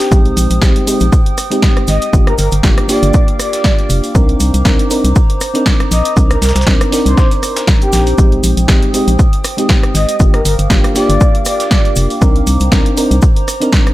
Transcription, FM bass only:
0, 0, Header, 1, 2, 480
1, 0, Start_track
1, 0, Key_signature, -3, "minor"
1, 0, Tempo, 504202
1, 111, Time_signature, 4, 2, 24, 8
1, 13269, End_track
2, 0, Start_track
2, 0, Title_t, "FM bass"
2, 0, Program_c, 0, 39
2, 110, Note_on_c, 0, 34, 96
2, 309, Note_off_c, 0, 34, 0
2, 350, Note_on_c, 0, 34, 91
2, 457, Note_off_c, 0, 34, 0
2, 481, Note_on_c, 0, 34, 78
2, 570, Note_off_c, 0, 34, 0
2, 590, Note_on_c, 0, 34, 94
2, 697, Note_off_c, 0, 34, 0
2, 962, Note_on_c, 0, 34, 96
2, 1050, Note_off_c, 0, 34, 0
2, 1790, Note_on_c, 0, 32, 90
2, 1897, Note_off_c, 0, 32, 0
2, 2030, Note_on_c, 0, 31, 97
2, 2230, Note_off_c, 0, 31, 0
2, 2271, Note_on_c, 0, 31, 89
2, 2377, Note_off_c, 0, 31, 0
2, 2401, Note_on_c, 0, 31, 81
2, 2490, Note_off_c, 0, 31, 0
2, 2511, Note_on_c, 0, 31, 94
2, 2617, Note_off_c, 0, 31, 0
2, 2882, Note_on_c, 0, 31, 101
2, 2971, Note_off_c, 0, 31, 0
2, 3711, Note_on_c, 0, 29, 92
2, 3817, Note_off_c, 0, 29, 0
2, 3951, Note_on_c, 0, 36, 98
2, 4150, Note_off_c, 0, 36, 0
2, 4190, Note_on_c, 0, 36, 85
2, 4297, Note_off_c, 0, 36, 0
2, 4322, Note_on_c, 0, 36, 78
2, 4410, Note_off_c, 0, 36, 0
2, 4431, Note_on_c, 0, 36, 95
2, 4537, Note_off_c, 0, 36, 0
2, 4801, Note_on_c, 0, 36, 94
2, 4890, Note_off_c, 0, 36, 0
2, 5631, Note_on_c, 0, 34, 90
2, 5737, Note_off_c, 0, 34, 0
2, 5871, Note_on_c, 0, 36, 92
2, 6070, Note_off_c, 0, 36, 0
2, 6111, Note_on_c, 0, 36, 92
2, 6217, Note_off_c, 0, 36, 0
2, 6241, Note_on_c, 0, 36, 77
2, 6330, Note_off_c, 0, 36, 0
2, 6351, Note_on_c, 0, 36, 92
2, 6457, Note_off_c, 0, 36, 0
2, 6720, Note_on_c, 0, 36, 99
2, 6810, Note_off_c, 0, 36, 0
2, 7550, Note_on_c, 0, 34, 84
2, 7749, Note_off_c, 0, 34, 0
2, 7790, Note_on_c, 0, 34, 94
2, 7989, Note_off_c, 0, 34, 0
2, 8030, Note_on_c, 0, 34, 91
2, 8137, Note_off_c, 0, 34, 0
2, 8161, Note_on_c, 0, 34, 79
2, 8250, Note_off_c, 0, 34, 0
2, 8270, Note_on_c, 0, 34, 93
2, 8377, Note_off_c, 0, 34, 0
2, 8641, Note_on_c, 0, 34, 100
2, 8730, Note_off_c, 0, 34, 0
2, 9470, Note_on_c, 0, 32, 88
2, 9577, Note_off_c, 0, 32, 0
2, 9710, Note_on_c, 0, 31, 97
2, 9910, Note_off_c, 0, 31, 0
2, 9950, Note_on_c, 0, 31, 90
2, 10057, Note_off_c, 0, 31, 0
2, 10081, Note_on_c, 0, 31, 75
2, 10170, Note_off_c, 0, 31, 0
2, 10190, Note_on_c, 0, 31, 99
2, 10297, Note_off_c, 0, 31, 0
2, 10562, Note_on_c, 0, 31, 99
2, 10650, Note_off_c, 0, 31, 0
2, 11390, Note_on_c, 0, 29, 92
2, 11497, Note_off_c, 0, 29, 0
2, 11630, Note_on_c, 0, 36, 96
2, 11829, Note_off_c, 0, 36, 0
2, 11870, Note_on_c, 0, 36, 90
2, 11977, Note_off_c, 0, 36, 0
2, 12001, Note_on_c, 0, 36, 76
2, 12090, Note_off_c, 0, 36, 0
2, 12110, Note_on_c, 0, 36, 97
2, 12217, Note_off_c, 0, 36, 0
2, 12481, Note_on_c, 0, 36, 105
2, 12570, Note_off_c, 0, 36, 0
2, 13269, End_track
0, 0, End_of_file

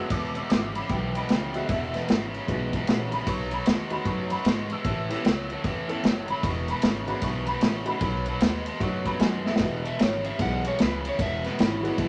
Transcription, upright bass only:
0, 0, Header, 1, 2, 480
1, 0, Start_track
1, 0, Tempo, 395517
1, 137, Time_signature, 4, 2, 24, 8
1, 14665, End_track
2, 0, Start_track
2, 0, Title_t, "Upright bass"
2, 0, Program_c, 0, 32
2, 129, Note_on_c, 0, 28, 93
2, 468, Note_off_c, 0, 28, 0
2, 620, Note_on_c, 0, 32, 95
2, 956, Note_off_c, 0, 32, 0
2, 1092, Note_on_c, 0, 35, 97
2, 1430, Note_off_c, 0, 35, 0
2, 1579, Note_on_c, 0, 37, 86
2, 1915, Note_off_c, 0, 37, 0
2, 2054, Note_on_c, 0, 28, 104
2, 2392, Note_off_c, 0, 28, 0
2, 2535, Note_on_c, 0, 32, 89
2, 2872, Note_off_c, 0, 32, 0
2, 3014, Note_on_c, 0, 35, 95
2, 3352, Note_off_c, 0, 35, 0
2, 3501, Note_on_c, 0, 34, 86
2, 3836, Note_off_c, 0, 34, 0
2, 3968, Note_on_c, 0, 35, 100
2, 4308, Note_off_c, 0, 35, 0
2, 4456, Note_on_c, 0, 39, 97
2, 4792, Note_off_c, 0, 39, 0
2, 4924, Note_on_c, 0, 42, 97
2, 5265, Note_off_c, 0, 42, 0
2, 5401, Note_on_c, 0, 44, 92
2, 5742, Note_off_c, 0, 44, 0
2, 5883, Note_on_c, 0, 33, 99
2, 6224, Note_off_c, 0, 33, 0
2, 6368, Note_on_c, 0, 37, 95
2, 6707, Note_off_c, 0, 37, 0
2, 6853, Note_on_c, 0, 40, 91
2, 7190, Note_off_c, 0, 40, 0
2, 7324, Note_on_c, 0, 30, 93
2, 7664, Note_off_c, 0, 30, 0
2, 7805, Note_on_c, 0, 28, 103
2, 8145, Note_off_c, 0, 28, 0
2, 8298, Note_on_c, 0, 32, 99
2, 8633, Note_off_c, 0, 32, 0
2, 8764, Note_on_c, 0, 35, 93
2, 9104, Note_off_c, 0, 35, 0
2, 9246, Note_on_c, 0, 33, 88
2, 9586, Note_off_c, 0, 33, 0
2, 9728, Note_on_c, 0, 35, 104
2, 10067, Note_off_c, 0, 35, 0
2, 10197, Note_on_c, 0, 39, 102
2, 10540, Note_off_c, 0, 39, 0
2, 10687, Note_on_c, 0, 42, 101
2, 11027, Note_off_c, 0, 42, 0
2, 11155, Note_on_c, 0, 42, 88
2, 11499, Note_off_c, 0, 42, 0
2, 11651, Note_on_c, 0, 28, 93
2, 11989, Note_off_c, 0, 28, 0
2, 12137, Note_on_c, 0, 32, 97
2, 12474, Note_off_c, 0, 32, 0
2, 12611, Note_on_c, 0, 35, 93
2, 12950, Note_off_c, 0, 35, 0
2, 13103, Note_on_c, 0, 37, 91
2, 13439, Note_off_c, 0, 37, 0
2, 13581, Note_on_c, 0, 28, 99
2, 13917, Note_off_c, 0, 28, 0
2, 14069, Note_on_c, 0, 32, 103
2, 14403, Note_off_c, 0, 32, 0
2, 14545, Note_on_c, 0, 35, 95
2, 14665, Note_off_c, 0, 35, 0
2, 14665, End_track
0, 0, End_of_file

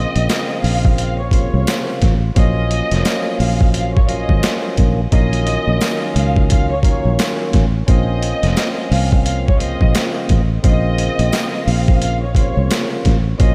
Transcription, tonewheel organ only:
0, 0, Header, 1, 2, 480
1, 0, Start_track
1, 0, Key_signature, -5, "minor"
1, 0, Tempo, 689655
1, 1645, Time_signature, 4, 2, 24, 8
1, 9428, End_track
2, 0, Start_track
2, 0, Title_t, "Tonewheel organ"
2, 0, Program_c, 0, 16
2, 0, Note_on_c, 0, 49, 98
2, 0, Note_on_c, 0, 53, 90
2, 0, Note_on_c, 0, 58, 91
2, 0, Note_on_c, 0, 60, 83
2, 0, Note_on_c, 0, 65, 108
2, 843, Note_off_c, 0, 49, 0
2, 845, Note_off_c, 0, 53, 0
2, 847, Note_off_c, 0, 58, 0
2, 850, Note_off_c, 0, 60, 0
2, 852, Note_off_c, 0, 65, 0
2, 917, Note_on_c, 0, 49, 96
2, 921, Note_on_c, 0, 53, 93
2, 926, Note_on_c, 0, 58, 84
2, 931, Note_on_c, 0, 48, 83
2, 935, Note_on_c, 0, 65, 101
2, 1487, Note_off_c, 0, 49, 0
2, 1489, Note_off_c, 0, 53, 0
2, 1492, Note_off_c, 0, 58, 0
2, 1494, Note_off_c, 0, 48, 0
2, 1496, Note_off_c, 0, 65, 0
2, 1634, Note_on_c, 0, 53, 95
2, 1639, Note_on_c, 0, 54, 85
2, 1644, Note_on_c, 0, 58, 88
2, 1648, Note_on_c, 0, 61, 86
2, 1653, Note_on_c, 0, 65, 105
2, 2763, Note_off_c, 0, 53, 0
2, 2765, Note_off_c, 0, 54, 0
2, 2767, Note_off_c, 0, 58, 0
2, 2770, Note_off_c, 0, 61, 0
2, 2772, Note_off_c, 0, 65, 0
2, 2837, Note_on_c, 0, 53, 90
2, 2841, Note_on_c, 0, 54, 90
2, 2846, Note_on_c, 0, 58, 82
2, 2851, Note_on_c, 0, 61, 81
2, 2855, Note_on_c, 0, 65, 96
2, 3318, Note_off_c, 0, 54, 0
2, 3321, Note_off_c, 0, 53, 0
2, 3322, Note_on_c, 0, 51, 98
2, 3323, Note_off_c, 0, 58, 0
2, 3327, Note_off_c, 0, 61, 0
2, 3327, Note_on_c, 0, 54, 86
2, 3330, Note_off_c, 0, 65, 0
2, 3331, Note_on_c, 0, 58, 85
2, 3335, Note_on_c, 0, 61, 77
2, 3340, Note_on_c, 0, 65, 102
2, 3483, Note_off_c, 0, 51, 0
2, 3485, Note_off_c, 0, 54, 0
2, 3487, Note_off_c, 0, 58, 0
2, 3490, Note_off_c, 0, 61, 0
2, 3492, Note_off_c, 0, 65, 0
2, 3567, Note_on_c, 0, 51, 95
2, 3571, Note_on_c, 0, 54, 86
2, 3576, Note_on_c, 0, 58, 86
2, 3581, Note_on_c, 0, 61, 92
2, 3585, Note_on_c, 0, 65, 112
2, 4689, Note_off_c, 0, 51, 0
2, 4691, Note_off_c, 0, 54, 0
2, 4694, Note_off_c, 0, 58, 0
2, 4696, Note_off_c, 0, 61, 0
2, 4698, Note_off_c, 0, 65, 0
2, 4759, Note_on_c, 0, 51, 91
2, 4764, Note_on_c, 0, 54, 87
2, 4768, Note_on_c, 0, 58, 92
2, 4773, Note_on_c, 0, 61, 82
2, 4777, Note_on_c, 0, 65, 103
2, 5328, Note_off_c, 0, 51, 0
2, 5331, Note_off_c, 0, 54, 0
2, 5333, Note_off_c, 0, 58, 0
2, 5335, Note_off_c, 0, 61, 0
2, 5337, Note_off_c, 0, 65, 0
2, 5475, Note_on_c, 0, 61, 91
2, 5479, Note_on_c, 0, 53, 90
2, 5484, Note_on_c, 0, 58, 81
2, 5488, Note_on_c, 0, 60, 87
2, 5493, Note_on_c, 0, 65, 98
2, 6603, Note_off_c, 0, 61, 0
2, 6605, Note_off_c, 0, 53, 0
2, 6607, Note_off_c, 0, 58, 0
2, 6610, Note_off_c, 0, 60, 0
2, 6612, Note_off_c, 0, 65, 0
2, 6675, Note_on_c, 0, 49, 91
2, 6679, Note_on_c, 0, 53, 89
2, 6684, Note_on_c, 0, 58, 89
2, 6688, Note_on_c, 0, 60, 80
2, 6693, Note_on_c, 0, 65, 98
2, 7246, Note_off_c, 0, 49, 0
2, 7248, Note_off_c, 0, 53, 0
2, 7251, Note_off_c, 0, 58, 0
2, 7253, Note_off_c, 0, 60, 0
2, 7255, Note_off_c, 0, 65, 0
2, 7395, Note_on_c, 0, 49, 93
2, 7400, Note_on_c, 0, 53, 87
2, 7404, Note_on_c, 0, 58, 91
2, 7409, Note_on_c, 0, 60, 82
2, 7413, Note_on_c, 0, 65, 109
2, 8523, Note_off_c, 0, 49, 0
2, 8526, Note_off_c, 0, 53, 0
2, 8528, Note_off_c, 0, 58, 0
2, 8530, Note_off_c, 0, 60, 0
2, 8532, Note_off_c, 0, 65, 0
2, 8597, Note_on_c, 0, 49, 92
2, 8602, Note_on_c, 0, 53, 90
2, 8606, Note_on_c, 0, 58, 85
2, 8610, Note_on_c, 0, 48, 83
2, 8615, Note_on_c, 0, 65, 102
2, 9167, Note_off_c, 0, 49, 0
2, 9170, Note_off_c, 0, 53, 0
2, 9172, Note_off_c, 0, 58, 0
2, 9174, Note_off_c, 0, 48, 0
2, 9176, Note_off_c, 0, 65, 0
2, 9314, Note_on_c, 0, 53, 92
2, 9318, Note_on_c, 0, 54, 88
2, 9323, Note_on_c, 0, 58, 89
2, 9328, Note_on_c, 0, 61, 89
2, 9332, Note_on_c, 0, 65, 101
2, 9428, Note_off_c, 0, 53, 0
2, 9428, Note_off_c, 0, 54, 0
2, 9428, Note_off_c, 0, 58, 0
2, 9428, Note_off_c, 0, 61, 0
2, 9428, Note_off_c, 0, 65, 0
2, 9428, End_track
0, 0, End_of_file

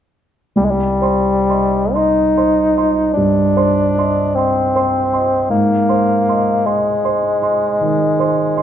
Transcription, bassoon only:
0, 0, Header, 1, 2, 480
1, 0, Start_track
1, 0, Key_signature, -3, "minor"
1, 0, Tempo, 918836
1, 295, Time_signature, 12, 3, 24, 8
1, 782, Tempo, 878477
1, 1262, Tempo, 791557
1, 2702, Tempo, 764331
1, 5135, End_track
2, 0, Start_track
2, 0, Title_t, "Bassoon"
2, 0, Program_c, 0, 70
2, 296, Note_on_c, 0, 55, 44
2, 339, Note_on_c, 0, 56, 39
2, 347, Note_off_c, 0, 55, 0
2, 373, Note_on_c, 0, 55, 50
2, 380, Note_off_c, 0, 56, 0
2, 1025, Note_on_c, 0, 63, 48
2, 1033, Note_off_c, 0, 55, 0
2, 1719, Note_off_c, 0, 63, 0
2, 1723, Note_on_c, 0, 62, 49
2, 2461, Note_on_c, 0, 60, 47
2, 2470, Note_off_c, 0, 62, 0
2, 3171, Note_off_c, 0, 60, 0
2, 3175, Note_on_c, 0, 58, 51
2, 3901, Note_on_c, 0, 56, 49
2, 3910, Note_off_c, 0, 58, 0
2, 5135, Note_off_c, 0, 56, 0
2, 5135, End_track
0, 0, End_of_file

